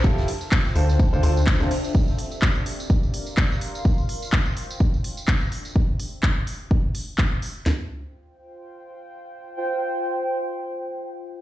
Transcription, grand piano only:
X:1
M:4/4
L:1/16
Q:"Swing 16ths" 1/4=126
K:F
V:1 name="Grand piano"
[F,EFGA]2 z4 [D,DFAc]2 z [D,DFAc] [D,DFAc] z2 [C,DFAc] z2 | z16 | z16 | z16 |
z16 | z16 |]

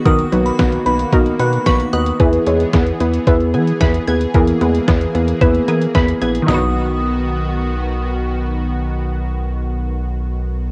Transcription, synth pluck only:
X:1
M:4/4
L:1/8
Q:1/4=112
K:B
V:1 name="Synth pluck"
[B,DFA] [B,DFB] [B,DFB] [B,DFB] [B,DFA] [B,DFB] [B,DFB] [B,DFB] | [B,EGB] [B,EGc] [B,EGB] [B,EGB] [B,EGB] [B,EGB] [B,EGB] [B,EGB] | [B,EGA] [B,EGB] [B,EGB] [B,EGB] [B,EGB] [B,EGA] [B,EGB] [B,EGB] | [DFB]8- |
[DFB]8 |]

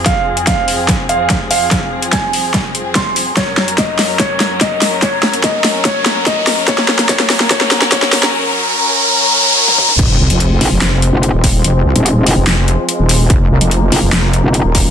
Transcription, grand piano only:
X:1
M:4/4
L:1/8
Q:1/4=145
K:Fphr
V:1 name="Grand piano"
f z f3 f z f- | f2 a4 c' z | d z e2 d z e2 | d z e2 d z e2 |
d z d z d z d z | z8 | z8 | z8 |
z8 |]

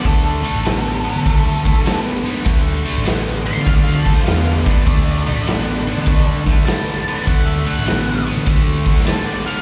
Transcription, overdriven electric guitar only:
X:1
M:4/4
L:1/8
Q:"Swing" 1/4=100
K:Clyd
V:1 name="Overdriven electric guitar" clef=bass
[D,A,] [D,A,] [D,B,] [D,B,] [D,A,] [D,A,] [D,B,] [D,B,] | [D,A,] [D,A,] [D,B,] [D,B,] [D,A,] [D,A,] [D,B,] [D,B,] | [D,A,] [D,A,] [D,B,] [D,B,] [D,A,] [D,A,] [D,B,] [D,B,] | [D,A,] [D,A,] [D,B,] [D,B,] [D,A,] [D,A,] [D,B,] [D,B,] |]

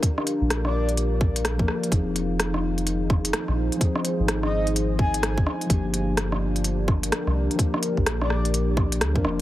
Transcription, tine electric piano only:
X:1
M:4/4
L:1/16
Q:"Swing 16ths" 1/4=127
K:Gphr
V:1 name="Tine electric piano"
z12 z [F,B,DB]3 | [F,CEA]16 | [F,CEA]16 | [F,B,DG]16 |
[F,B,DG]12- [F,B,DG] [F,B,DB]3 |]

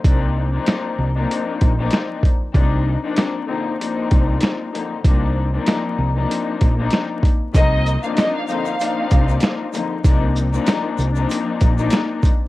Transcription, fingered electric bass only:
X:1
M:4/4
L:1/16
Q:"Swing 16ths" 1/4=96
K:Cm
V:1 name="Fingered electric bass" clef=bass
C,,4 z2 C,,2 z2 B,,,2 z4 | C,,3 z6 z C,,2 z4 | C,,4 z2 C,,2 z2 B,,,2 z4 | C,,3 z6 z C,,2 z4 |
C,,4 z2 C,,2 z2 B,,,2 z4 |]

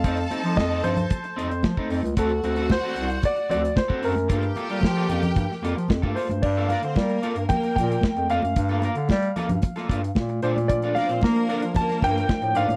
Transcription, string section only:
X:1
M:4/4
L:1/16
Q:1/4=113
K:Gm
V:1 name="String section"
[Aa]12- [Aa]2 z2 | [^F^f]12- [Ff]2 z2 | [Gg]12- [Gg]2 z2 | z2 [Dd] [Cc] [B,B]4 [B,B]6 z2 |
z16 | z2 [Dd] [Cc] [B,B]4 [B,B]6 z2 |]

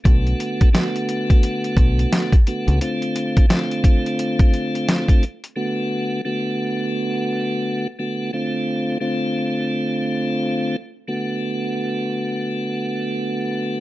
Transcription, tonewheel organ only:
X:1
M:4/4
L:1/8
Q:"Swing 16ths" 1/4=87
K:Dlyd
V:1 name="Tonewheel organ"
[D,A,B,F]2 [D,A,B,F]4- [D,A,B,F] [D,A,B,F] | [D,A,=C=F]2 [D,A,CF]4- [D,A,CF] z | [D,A,B,F]2 [D,A,B,F]4- [D,A,B,F] [D,A,B,F] | [D,A,=C=F]2 [D,A,CF]4- [D,A,CF] z |
[D,A,B,F]8 |]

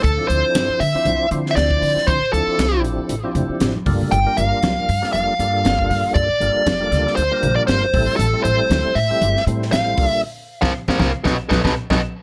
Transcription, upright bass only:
X:1
M:4/4
L:1/16
Q:"Swing 16ths" 1/4=118
K:Gdor
V:1 name="Upright bass" clef=bass
D,, z D,, z G,, z D, z C,, z D,2 D,,2 D, z | D, z D,, z C,,2 A,,, z A,,, z F,, z A,,, z G,,, z | G,,, z G,,, z C,, z G,, z F,,, z G,,2 G,,,2 G,, z | G,, z G,,, z F,,,2 D,, z D,, z B,,, z G,,, z A,,, z |
A,,, z A,,, z D,, z A,, z G,,, z A,,2 A,,,2 C,, z | z3 C,, z C,, C,, z =B,,, z B,,, B,,, z B,,, z2 |]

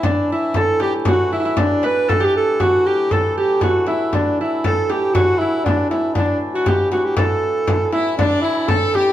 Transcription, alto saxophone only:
X:1
M:2/4
L:1/16
Q:1/4=118
K:Em
V:1 name="Alto saxophone"
D2 E2 A2 G2 | F2 E2 D2 B2 | A G A2 F2 G2 | A2 G2 F2 E2 |
D2 E2 A2 G2 | F2 E2 D2 E2 | D2 z F G2 F G | A6 E2 |
D2 E2 A2 G2 |]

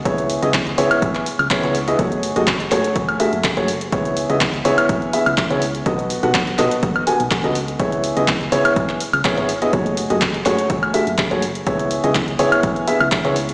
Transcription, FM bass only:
X:1
M:4/4
L:1/16
Q:"Swing 16ths" 1/4=124
K:C#m
V:1 name="FM bass" clef=bass
C,,3 C,,3 C,, z G,,, z2 C,, z C,,3 | F,,,3 F,,,3 F,,, z C,, z2 F,,, z F,,,3 | C,,3 C,,3 C,, z G,,, z2 C,, z C,,3 | B,,,3 B,,,3 B,,, z F,,, z2 B,,, z C,,3 |
C,,3 C,,3 C,, z G,,, z2 C,, z G,,,3 | F,,,3 F,,,3 F,,, z C,, z2 F,,, z F,,,3 | C,,3 C,,3 C,, z G,,, z2 C,, z C,,3 |]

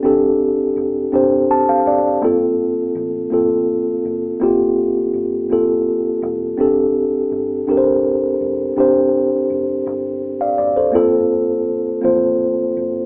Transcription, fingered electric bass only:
X:1
M:6/8
L:1/8
Q:3/8=55
K:F
V:1 name="Fingered electric bass" clef=bass
F,,,2 F,,, G,,,2 _G,,, | G,,,2 A,,, A,,,2 _G,,, | G,,,2 G,,, A,,,2 E,,, | F,,,2 G,,, G,,,2 E,,, |
F,,,2 F,,, G,,,2 _G,,, | G,,,2 A,,, A,,,2 _G,,, |]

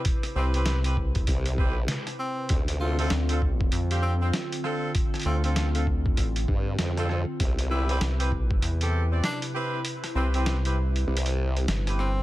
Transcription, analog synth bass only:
X:1
M:4/4
L:1/8
Q:"Swing 16ths" 1/4=98
K:C
V:1 name="Analog synth bass" clef=bass
z C,,3 z4 | z2 D,,2 F,,2 z2 | z D,,3 A,,, z3 | z2 C,,2 E,,2 z2 |
z C,,3 z2 G,,,2 |]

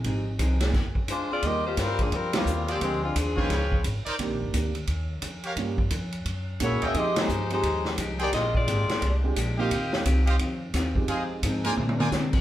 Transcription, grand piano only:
X:1
M:4/4
L:1/8
Q:"Swing" 1/4=174
K:Eb
V:1 name="Grand piano"
[A,CEG] z2 [B,,A,CDA] z4 | [G,B,CEF] z4 [G,B,CEF] z2 | [F,A,CDF] z2 [F,A,_C_DE] z4 | [E,B,CDG]2 [E,B,CDG] z4 z |
[G,B,_DFG] z4 z [A,B,D_F_G]2 | [A,CEFG] z2 [A,CEFG] z4 | z4 z [A,CDFG] z [B,CEFG] | z6 z [A,CEFG]- |
[A,CEFG]2 z [B,CDFA] z4 |]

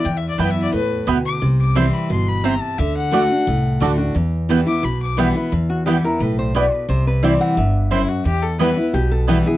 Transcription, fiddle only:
X:1
M:4/4
L:1/16
Q:1/4=176
K:Em
V:1 name="Fiddle"
(3g2 e2 d2 (3g2 e2 d2 B4 z2 d'2 | z2 d'2 c'2 b2 c'2 b2 ^a2 =a2 | e2 f12 z2 | z6 d'2 b2 d'2 b4 |
z16 | z12 E2 F2 | G2 A2 B3 z8 z |]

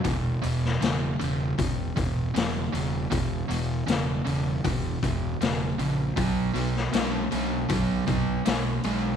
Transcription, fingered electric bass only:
X:1
M:4/4
L:1/8
Q:1/4=78
K:E
V:1 name="Fingered electric bass" clef=bass
E,,, E,,, E,,, E,,, E,,, E,,, E,,, E,,, | E,,, E,,, E,,, E,,, E,,, E,,, E,,, ^A,,, | B,,, B,,, B,,, B,,, B,,, B,,, B,,, B,,, |]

